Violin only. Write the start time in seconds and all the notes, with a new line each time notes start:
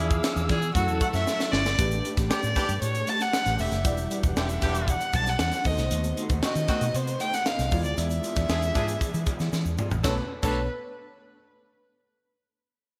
Already playing: E4
0.49 G#4
0.75 F#4
1.02 F#5
1.14 E5
1.52 D5
2.31 D5
2.83 C#5
3.09 A5
3.22 F#5
3.60 E5
4.37 E5
4.90 F#5
5.16 A5
5.29 F#5
5.67 D#5
6.43 D#5
6.96 C5
7.21 G5
7.34 F#5
7.47 F5
7.85 D5
7.98 E5
10.06 B4
10.44 B4